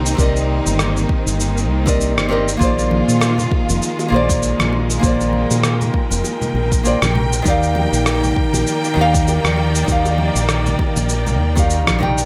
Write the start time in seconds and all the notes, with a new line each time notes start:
Already playing: C2 D#3 A#3 C4 D#4 G4 A#4 D5 D#5
0.06 cabasa
0.15 C2 C4 G4 A#4, kick
0.19 D5 D#5, cabasa
0.36 cabasa
0.66 G1, cabasa
0.79 cross-stick, cabasa
0.97 cabasa
1.09 kick
1.26 G1, cabasa
1.40 cabasa
1.57 cabasa
1.69 C2
1.86 C4 G4 A#4 D5 D#5, kick, cabasa
2.01 cabasa
2.17 G1, cross-stick, cabasa
2.29 C4 G4 A#4 D5 D#5
2.48 cabasa
2.57 A#1 G#3 A#3 F4 G#4 A#4 A#5, kick
2.61 C5 D5, cabasa
2.78 high bongo, cabasa
2.91 high conga
3.08 A#2, cabasa
3.21 cross-stick, high bongo, cabasa
3.38 low conga, cabasa
3.51 kick, high bongo
3.69 F1, high conga, cabasa
3.82 cabasa
3.99 high bongo, cabasa
4.08 A#1 A#3 F4 G#4
4.14 C5 D5
4.29 kick, high bongo, cabasa
4.43 cabasa
4.59 A#1, cross-stick, high conga, cabasa
4.73 high bongo
4.90 cabasa
4.99 A#1 A#3 F4 G#4 G5, kick, high bongo
5.03 C5 D5, cabasa
5.21 cabasa
5.33 high conga
5.51 A#2, high bongo, cabasa
5.64 cross-stick, cabasa
5.81 high bongo, low conga, cabasa
5.94 kick
6.11 F1, high conga, cabasa
6.24 high bongo, cabasa
6.42 low conga, cabasa
6.54 A#1, high bongo
6.72 kick, cabasa
6.83 A#3 F4 G#4 C5 D5, cabasa
7.02 A#1, cross-stick, high bongo, high conga, cabasa
7.15 low conga
7.33 high bongo, cabasa
7.42 D#2 D#3 A#3 D#4 G4 D5, kick, cabasa
7.48 D5 F5
7.63 cabasa
7.75 high bongo, high conga
7.93 A#1, cabasa
8.06 cross-stick, high bongo, cabasa
8.23 low conga, cabasa
8.36 kick
8.53 A#1, high bongo, high conga, cabasa
8.67 cabasa
8.84 high bongo, cabasa
8.94 D#2 D#3 D#4 G4
8.99 D5 F5
9.14 kick, cabasa
9.28 high bongo, cabasa
9.44 D#2, cross-stick, high conga, cabasa
9.57 high bongo
9.75 cabasa
9.84 D#2 D#3 D#4 G4, kick, cabasa
9.90 D5 F5
10.06 high bongo, cabasa
10.18 high conga
10.35 A#1, high bongo, cabasa
10.49 cross-stick, cabasa
10.66 low conga, cabasa
10.79 kick, high bongo
10.96 A#1, high conga, cabasa
11.09 high bongo, cabasa
11.27 low conga, cabasa
11.39 D#2
11.55 D#3 D#4 G4 D5 F5, kick, high bongo, cabasa
11.70 cabasa
11.87 A#1, kick, cross-stick, high bongo, high conga, cabasa
11.99 D#3 D#4 G4 D5 G5, low conga
12.18 cabasa